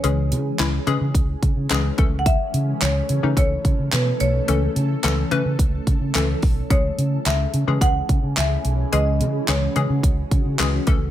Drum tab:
HH |xxxxxxxx|xxxxxxxx|xxxxxxxo|xxxxxxxx|
CP |--x---x-|--x---x-|--x---x-|--x---x-|
SD |--o---o-|--o---o-|--o---o-|--o---o-|
BD |----oo-o|o---oo--|----oo-o|o---oo--|

HH |xxxxxxxx|
CP |--x---x-|
SD |--o---o-|
BD |----oo-o|